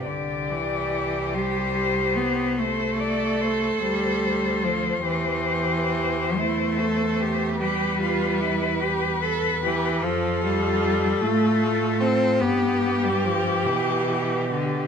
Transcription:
<<
  \new Staff \with { instrumentName = "Cello" } { \time 12/8 \key c \major \tempo 4. = 49 d''4. c''4. c''8 d''8 c''2~ | c''2. b'2. | a'2. g'2. | }
  \new Staff \with { instrumentName = "Cello" } { \time 12/8 \key c \major g'2. a'2. | g'4. e'8 a'8 g'8 g'8 f'8 e'8 g'8 a'8 g'8 | f'4. f'4. g'2. | }
  \new Staff \with { instrumentName = "Cello" } { \clef bass \time 12/8 \key c \major d8 e4 g4 b8 a4. g4 f8 | e4. a4. g2 r8 e8 | f8 g4 a4 c'8 b8. g16 f8 e4 d8 | }
  \new Staff \with { instrumentName = "Cello" } { \clef bass \time 12/8 \key c \major c,1~ c,8 d,4. | e,1. | f,4. a,4. g,4. b,4. | }
>>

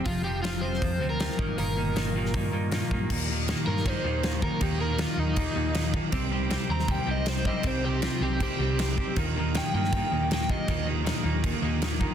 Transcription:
<<
  \new Staff \with { instrumentName = "Overdriven electric guitar" } { \time 4/4 \key ees \major \tempo 4 = 158 f'8 g'8 f'8 c''4~ c''16 bes'4~ bes'16 | bes'2.~ bes'8 r8 | r4. bes'8 c''4. bes'8 | g'8 bes'8 f'8 ees'2 r8 |
r4. bes''8 g''8 ees''8 c''8 ees''8 | c''8 g'8 f'8 g'8 g'2 | r4 g''8 g''4. g''8 ees''8~ | ees''8 r2. r8 | }
  \new Staff \with { instrumentName = "Tonewheel organ" } { \time 4/4 \key ees \major r1 | r1 | <ees bes g' d''>1~ | <ees bes g' d''>1 |
<c c' ees' bes'>1~ | <c c' ees' bes'>1 | <d ees bes g'>1~ | <d ees bes g'>1 | }
  \new Staff \with { instrumentName = "Clean electric guitar" } { \clef bass \time 4/4 \key ees \major <f, c f>8 <f, c f>8 <f, c f>8 <f, c f>8 <f, c f>8 <f, c f>8 <f, c f>8 <ees, bes, ees>8 | <ees, bes, ees>8 <ees, bes, ees>8 <ees, bes, ees>8 <ees, bes, ees>8 <ees, bes, ees>8 <ees, bes, ees>8 <ees, bes, ees>8 <ees, bes, ees>8 | <ees, bes, ees>8 <ees, bes, ees>8 <ees, bes, ees>8 <ees, bes, ees>8 <ees, bes, ees>8 <ees, bes, ees>8 <ees, bes, ees>8 <ees, bes, ees>8 | <ees, bes, ees>8 <ees, bes, ees>8 <ees, bes, ees>8 <ees, bes, ees>8 <ees, bes, ees>8 <ees, bes, ees>8 <ees, bes, ees>8 <ees, bes, ees>8 |
<c g c'>8 <c g c'>8 <c g c'>8 <c g c'>8 <c g c'>8 <c g c'>8 <c g c'>8 <c g c'>8 | <c g c'>8 <c g c'>8 <g c'>8 <c g c'>8 <c g c'>8 <c g c'>8 <c g c'>8 <c g c'>8 | <ees, bes, ees>8 <ees, bes, ees>8 <ees, bes, ees>8 <ees, bes, ees>8 <ees, bes, ees>8 <ees, bes, ees>8 <ees, bes, ees>8 <ees, bes, ees>8 | <ees, bes, ees>8 <ees, bes, ees>8 <ees, bes, ees>8 <ees, bes, ees>8 <ees, bes, ees>8 <ees, bes, ees>8 <ees, bes, ees>8 <ees, bes, ees>8 | }
  \new Staff \with { instrumentName = "Fingered electric bass" } { \clef bass \time 4/4 \key ees \major f,,2 f,8 d,4 g,,8 | g,,2 g,8 g,4 g,8 | ees,4. g,4 ees,4. | ees,4. ees,4 ees,4. |
c,4. ees,4 c,4. | c,4. c,4 c,4. | ees,4. g,4 ees,4. | ees,4. ees,4 ees,4. | }
  \new DrumStaff \with { instrumentName = "Drums" } \drummode { \time 4/4 <hho bd>4 <hho sn>8. sn16 <hho bd>4 <hho sn>16 sn16 bd8 | hho4 <hho sn>8. sn16 <hho bd>4 <hho sn>16 sn16 bd8 | <cymc bd>4 <cymc sn>8. sn16 <cymc bd>4 <cymc sn>8 bd8 | <cymc bd>4 <cymc sn>4 <cymc bd>4 <cymc sn>16 sn16 bd8 |
<cymc bd>4 <cymc sn>8. sn16 <cymc bd>4 <cymc sn>16 sn16 bd8 | <cymc bd>4 <cymc sn>4 <cymc bd>4 <cymc sn>8 bd8 | <cymc bd>4 <cymc sn>8. sn16 <cymc bd>4 <cymc sn>16 sn16 bd8 | <cymc bd>4 <cymc sn>4 <cymc bd>4 <cymc sn>16 sn16 bd8 | }
>>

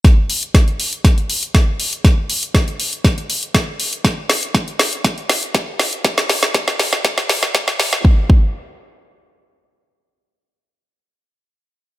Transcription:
\new DrumStaff \with { instrumentName = "Drums" } \drummode { \time 4/4 \tempo 4 = 120 <hh bd sn>8 hho16 hh16 <hh bd sn>16 hh16 hho16 hh16 <hh bd sn>16 hh16 hho16 hh16 <hh bd sn>8 hho16 hh16 | <hh bd sn>8 hho16 hh16 <hh bd sn>16 hh16 hho16 hh16 <hh bd sn>16 hh16 hho16 hh16 <hh bd sn>8 hho16 hh16 | <hh bd sn>8 <hho sn>16 hh16 <hh bd sn>16 hh16 <hho sn>16 hh16 <hh bd sn>16 hh16 <hho sn>16 hh16 <hh bd sn>8 <hho sn>16 hh16 | <hh bd sn>16 sn16 <hho sn>16 sn16 <hh bd sn>16 <hh sn>16 <hho sn>16 sn16 <hh bd sn>16 <hh sn>16 <hho sn>16 sn16 <hh bd sn>16 sn16 <hho sn>16 sn16 |
bd8 bd8 r4 r4 r4 | r4 r4 r4 r4 | }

